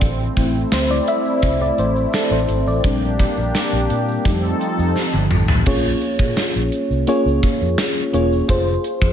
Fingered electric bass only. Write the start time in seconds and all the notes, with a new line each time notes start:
0.02 A1
0.37 A1
0.72 D2
1.43 C2
1.78 A1
2.31 A1
2.49 G#1
2.66 A1
2.84 A#1
3.37 A#1
3.73 A#1
3.90 A#2
4.25 F2
4.78 F2
5.14 G1
5.32 G#1
5.50 A1
5.66 A#1
6.19 A#2
6.56 A#1
6.90 C2
7.25 C#2
7.61 F2
8.13 E1
8.49 F1
9.02 F2